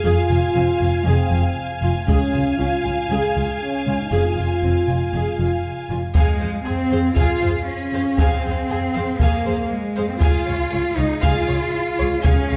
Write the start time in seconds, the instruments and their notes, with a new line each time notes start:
Already playing: violin section F5 G#5
0.03 double bass section F1, cello section F2, french horn section F4, viola section G#4
0.29 double bass section F1, cello section F2, viola section F4
0.54 double bass section F1, cello section F2, viola section C4
0.79 double bass section F1, cello section F2, viola section F4
1.04 double bass section F1, cello section F2, french horn section C4, viola section G#4
1.30 double bass section F1, cello section F2, viola section F4
1.82 double bass section F1, cello section F2, viola section F4
2.07 cello section C#2, double bass section C#2, french horn section C#4, viola section G#4, violin section F5 G#5, taiko
2.33 cello section C#2, double bass section C#2, viola section F4
2.58 cello section C#2, double bass section C#2, viola section C#4, french horn section F4
2.84 cello section C#2, double bass section C#2, viola section F4
3.09 cello section C#2, double bass section C#2, viola section G#4, french horn section G#4
3.35 cello section C#2, double bass section C#2, viola section F4
3.61 french horn section C#4
3.86 double bass section C#2, cello section C#2, viola section F4
4.00 french horn section D#4
4.11 double bass section F1, cello section F2, french horn section F4, viola section G#4
4.37 double bass section F1, cello section F2, viola section F4
4.62 double bass section F1, cello section F2, viola section C4
4.88 double bass section F1, cello section F2, viola section F4
5.13 double bass section F1, cello section F2, viola section G#4
5.39 double bass section F1, cello section F2, viola section F4
5.89 double bass section F1, cello section F2, viola section F4
6.14 double bass section F2, cello section G#3, viola section G#4, french horn section G#4 F5, violin section F5 G#5, taiko
6.40 double bass section F2, viola section G#4, violin section C5 F5
6.65 double bass section F2, cello section C4, violin section G#4 C5, viola section G#4
6.91 double bass section F2, viola section G#4, violin section C5 F5
7.15 double bass section F2, cello section F4, viola section G#4, violin section F5 G#5, taiko
7.41 double bass section F2, viola section G#4, violin section C5 F5
7.67 cello section C#4
7.92 double bass section F2, viola section G#4, violin section C5 F5
8.18 double bass section F2, cello section C4, viola section G#4, violin section F5 G#5, taiko
8.43 double bass section F2, viola section G#4, violin section C5 F5
8.69 double bass section F2, viola section G#4, violin section G#4 C5
8.94 double bass section F2, viola section G#4, violin section C5 F5
9.19 double bass section F2, cello section A#3, viola section G#4, violin section F5 G#5, taiko
9.46 double bass section F2, viola section G#4, violin section C5 F5
9.70 cello section G#3
9.96 double bass section F2, viola section G#4, violin section C5 F5
10.09 cello section C4
10.20 double bass section C#2, cello section F4, viola section G#4, french horn section G#4 F5, violin section F5 G#5, taiko
10.46 double bass section C#2, viola section G#4, violin section C#5 F5
10.70 double bass section C#2, violin section G#4 C#5, viola section G#4
10.96 double bass section C#2, cello section D#4, viola section G#4, violin section C#5 F5
11.22 double bass section C#2, cello section F4, viola section G#4, violin section F5 G#5, taiko
11.48 double bass section C#2, viola section G#4, violin section C#5 F5
11.98 double bass section C#2, viola section G#4, violin section C#5 F5
12.23 double bass section C#2, cello section C#4, viola section G#4, violin section F5 G#5, taiko
12.50 double bass section C#2, viola section G#4, violin section C#5 F5